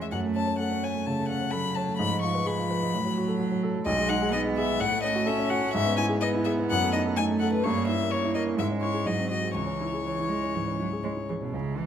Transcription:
Already playing: grand piano E2 C#4 G#4 C#5, cello G#3
0.00 grand piano G#3, violin E5
0.11 grand piano F#2, cello A3, violin F#5
0.24 grand piano A3
0.36 grand piano C#4, violin A5
0.47 grand piano C#5
0.59 cello A3, grand piano A4, violin F#5
0.71 grand piano C#4
0.83 grand piano C#5, violin G#5
0.94 grand piano A3
1.06 grand piano C#3, cello A3, violin A5
1.19 grand piano A3
1.29 grand piano C#4, violin F#5
1.41 grand piano C#5
1.51 cello F#3, grand piano A4, violin B5
1.64 grand piano C#4
1.75 grand piano C#5, violin A5
1.89 grand piano A3
1.98 grand piano G#2, cello F3, violin B5
2.11 grand piano G#3
2.22 grand piano F4, violin C#6
2.35 grand piano B4
2.46 cello F3, grand piano G#4, violin B5
2.58 grand piano F4
2.71 grand piano B4
2.83 grand piano G#3
2.92 grand piano A2, cello F#3
3.06 grand piano F#3
3.18 grand piano F#4
3.28 grand piano A4
3.39 grand piano F#4
3.52 grand piano F#3
3.63 grand piano A4
3.75 grand piano F#3
3.86 grand piano B1, cello G#3, violin D#5
3.98 grand piano G#3
4.09 grand piano D#4, violin F#5
4.22 grand piano G#4
4.32 cello B3, grand piano D#4, violin D#5
4.45 grand piano G#3
4.57 grand piano G#4, violin E5
4.69 grand piano G#3
4.80 grand piano A2, cello A3, violin F#5
4.91 grand piano A3
5.04 grand piano C#4, violin D#5
5.15 grand piano F#4
5.26 cello C#4, grand piano A4, violin E5
5.39 grand piano C#4
5.50 grand piano F#4, violin F#5
5.62 grand piano A3
5.74 grand piano G#2, violin E5
5.85 grand piano B3
5.97 grand piano E4, violin G#5
6.09 grand piano G#4
6.21 cello B3, grand piano B4, violin D#5
6.35 grand piano E4
6.45 grand piano G#4, violin E5
6.59 grand piano B3
6.71 grand piano F#2, violin F#5
6.82 grand piano A3
6.93 grand piano D#4, violin D#5
7.06 grand piano A4
7.16 cello A3, grand piano D#4, violin G#5
7.30 grand piano A3
7.39 grand piano A4, violin F#5
7.53 grand piano A3, violin B4
7.64 grand piano G2, cello A#3, violin C#5
7.77 grand piano C#4
7.88 grand piano E4, violin E5
8.01 grand piano A#4
8.11 cello A#3, violin C#5, grand piano C#5
8.24 grand piano E4
8.35 grand piano A#4, violin D#5
8.47 grand piano C#4
8.57 grand piano G#2, cello G#3, violin E5
8.71 grand piano C#4
8.81 grand piano E4, violin C#5
8.93 grand piano G#4
9.06 grand piano G#2, cello F#3, violin D#5
9.18 grand piano C4
9.30 grand piano F#4, violin D#5
9.43 grand piano G#4
9.54 grand piano C#2, cello E3, violin C#5
9.67 grand piano C#4
9.81 grand piano E4
9.93 grand piano G#4
10.05 cello E3, grand piano C#5
10.19 grand piano E4
10.28 cello G#3, grand piano G#4
10.43 grand piano C#4
10.55 grand piano G#2, cello E3
10.68 grand piano C#4
10.80 cello F#3, grand piano E4
10.93 grand piano G#4
11.03 cello G#3, grand piano C#5
11.17 grand piano E4
11.29 cello E3, grand piano G#4
11.41 cello B2, grand piano C#4
11.54 grand piano C#2, cello C#3, violin E4
11.78 cello E3

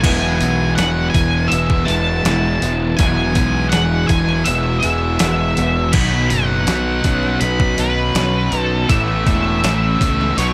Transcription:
Already playing: clean electric guitar B3
0.01 fingered electric bass E1, distorted electric guitar E2 B2, overdriven electric guitar E3 G#3, clean electric guitar F#3, lead electric guitar G#5, kick, crash
0.05 distorted electric guitar E3, overdriven electric guitar B3 E4
0.40 fingered electric bass B1, distorted electric guitar B2 E3, clean electric guitar B3, open hi-hat
0.75 fingered electric bass E1, distorted electric guitar E2 B2 E3, lead electric guitar F#5, snare, open hi-hat
1.10 distorted electric guitar E3, lead electric guitar G#5
1.14 fingered electric bass E1, distorted electric guitar B2, clean electric guitar E4, kick, open hi-hat
1.48 fingered electric bass E1, distorted electric guitar E2 B2, clean electric guitar B3, lead electric guitar E5, open hi-hat
1.52 distorted electric guitar E3
1.70 kick
1.85 fingered electric bass E1, distorted electric guitar E3, overdriven electric guitar B3 E4, lead electric guitar A5, open hi-hat
1.89 distorted electric guitar B2, overdriven electric guitar E3 G#3
2.23 fingered electric bass E1, distorted electric guitar E2 B2 E3, overdriven electric guitar E3 G#3 B3 E4, clean electric guitar E4, snare, open hi-hat
2.61 fingered electric bass E1, distorted electric guitar B2 E3, clean electric guitar B3, open hi-hat
2.97 fingered electric bass E1, distorted electric guitar E2 B2 E3, overdriven electric guitar E3 G#3 B3, clean electric guitar F#3, lead electric guitar G#5, kick, open hi-hat
3.01 overdriven electric guitar E4
3.35 fingered electric bass B1, distorted electric guitar B2 E3, clean electric guitar B3, kick, open hi-hat
3.69 fingered electric bass E1, distorted electric guitar E2 B2, lead electric guitar F#5, snare, open hi-hat
3.73 distorted electric guitar E3, clean electric guitar G#4
4.08 fingered electric bass E1, distorted electric guitar B2 E3, clean electric guitar E4, lead electric guitar G#5, kick, open hi-hat
4.29 snare
4.44 fingered electric bass E1, distorted electric guitar E2 B2 E3, clean electric guitar B3, lead electric guitar E5, open hi-hat
4.80 distorted electric guitar E3, overdriven electric guitar B3 E4, lead electric guitar E5, open hi-hat
4.84 fingered electric bass E1, distorted electric guitar B2, overdriven electric guitar E3 G#3, clean electric guitar G#4
5.19 fingered electric bass E1, distorted electric guitar E2 B2 E3, overdriven electric guitar E3 G#3 B3, clean electric guitar E4, snare, open hi-hat
5.24 overdriven electric guitar E4
5.57 fingered electric bass E1, distorted electric guitar B2 E3, clean electric guitar B3, open hi-hat
5.92 fingered electric bass B1, overdriven electric guitar B2 D#3 F#3, distorted electric guitar B2 F#3 B3, clean electric guitar D#3, lead electric guitar B5, kick, crash
5.97 overdriven electric guitar B3 D#4
6.30 fingered electric bass F#1, distorted electric guitar F#3 B3, clean electric guitar B3, lead electric guitar F#5, open hi-hat
6.67 fingered electric bass B1, distorted electric guitar B2 F#3 B3, clean electric guitar F#4, snare, open hi-hat
7.04 fingered electric bass B1, distorted electric guitar F#3 B3, clean electric guitar C#4, kick, open hi-hat
7.23 snare
7.41 fingered electric bass B1, distorted electric guitar B2 F#3 B3, clean electric guitar B3, lead electric guitar B5, open hi-hat
7.60 kick
7.78 fingered electric bass B1, overdriven electric guitar B2 D#3 F#3 B3 D#4, distorted electric guitar F#3 B3, clean electric guitar F#4, lead electric guitar B4, open hi-hat
8.15 fingered electric bass B1, overdriven electric guitar B2 D#3 F#3 B3 D#4, distorted electric guitar B2 F#3 B3, clean electric guitar C#4, snare, open hi-hat
8.52 fingered electric bass B1, distorted electric guitar F#3 B3, clean electric guitar B3, open hi-hat
8.59 lead electric guitar A4
8.89 fingered electric bass A1, overdriven electric guitar A2 E3 A3 C#4 E4, distorted electric guitar A2 E3 A3, clean electric guitar E3, lead electric guitar E5, kick, open hi-hat
9.26 fingered electric bass E1, clean electric guitar E3, distorted electric guitar E3 A3, kick, open hi-hat
9.63 fingered electric bass A1, distorted electric guitar A2 E3 A3, clean electric guitar C#4, snare, open hi-hat
10.01 fingered electric bass C#2, distorted electric guitar E3 A3, clean electric guitar B3, kick, open hi-hat
10.21 snare
10.37 fingered electric bass B1, overdriven electric guitar B2 F#3 B3 C#4, distorted electric guitar B2 F#3 B3, clean electric guitar F#3, lead electric guitar C#5, open hi-hat

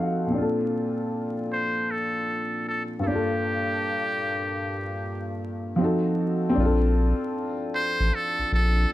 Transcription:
Already playing: upright piano F3 C4 D#4 F#4 A4 F5 F#5
0.26 upright piano A#2 C4
0.34 upright piano D4 F4
0.42 upright piano A4
1.53 muted trumpet C5
1.91 muted trumpet A4
2.68 muted trumpet A4
2.99 upright piano G2 A#3, muted trumpet A4
3.07 upright piano D4 F4, muted trumpet G4
3.15 upright piano A4
5.76 upright piano F3 C4
5.80 upright piano D#4 F#4 A4
6.49 upright piano C4
6.55 sub bass A#1, upright piano D4
6.60 upright piano F4
6.65 upright piano A4
7.76 muted trumpet C5
8.00 sub bass A1
8.15 muted trumpet A4
8.39 sub bass A#1
8.52 sub bass A#1, muted trumpet A4

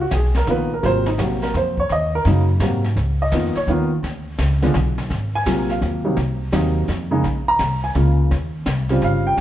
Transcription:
0.01 grand piano F#4
0.11 upright bass B1, grand piano G4, kick, snare, hi-hat pedal
0.15 grand piano G#4
0.35 grand piano A#4, snare
0.47 upright bass A#1, grand piano D#3 A#3 B3 F4 B4, kick, snare
0.74 grand piano A#4
0.83 upright bass G#1, grand piano C3 F#3 A#3 F4 C5, brush sweep, kick, snare
1.06 grand piano D#4, snare
1.18 upright bass A#1, grand piano C3 F#3 A#3 F#4, kick, snare, hi-hat pedal
1.42 grand piano A#4, snare
1.54 upright bass F2, grand piano C5, kick, snare
1.77 grand piano C#5, kick
1.89 upright bass D#2, grand piano D#5, brush sweep, kick, snare
2.15 grand piano A#4
2.25 upright bass F#2, grand piano C#3 F#3 A#3 D#4, kick, snare
2.60 upright bass G#2, grand piano C3 F#3 A#3 F#4, kick, snare, hi-hat pedal
2.84 snare
2.96 upright bass C#2, brush sweep, kick, snare
3.22 grand piano D#5
3.31 upright bass F2, grand piano D#3 A#3 B3 F4, kick, snare, hi-hat pedal
3.55 grand piano C#5, muted upright bass stroke, snare
3.67 upright bass D#2, grand piano D#3 A#3 B3 F4, kick, snare
4.03 upright bass D2, brush sweep, kick, snare
4.38 upright bass C#2, kick, snare, hi-hat pedal
4.62 grand piano D3 G#3 B3 F4, snare
4.74 upright bass B1, kick, snare, hi-hat pedal
4.98 snare
5.10 upright bass G#1, brush sweep, kick, snare
5.35 grand piano G#5
5.46 upright bass A#1, grand piano C3 F#3 A#3 F4, kick, snare, hi-hat pedal
5.69 grand piano F5, snare
5.82 upright bass D#2, kick, snare
6.05 grand piano C3 F#3 A#3 D#4
6.17 upright bass C2, brush sweep, kick, snare
6.52 upright bass D#2, grand piano C3 F#3 A#3 D#4, kick, snare, hi-hat pedal
6.88 upright bass F2, kick, snare
7.11 grand piano C#3 G#3 A#3 D#4
7.24 upright bass A#1, brush sweep, kick, snare
7.48 grand piano A#5
7.59 upright bass C2, kick, snare, hi-hat pedal
7.84 grand piano G#5
7.95 upright bass C#2, grand piano C#3 G#3 A#3 F4, kick, snare
8.31 upright bass D#2, brush sweep, kick, snare
8.66 upright bass C2, kick, snare, hi-hat pedal
8.89 grand piano C#3 G3 C4 F4, snare
9.02 upright bass G1, grand piano F5, kick, snare
9.27 grand piano G5
9.37 brush sweep, kick, snare

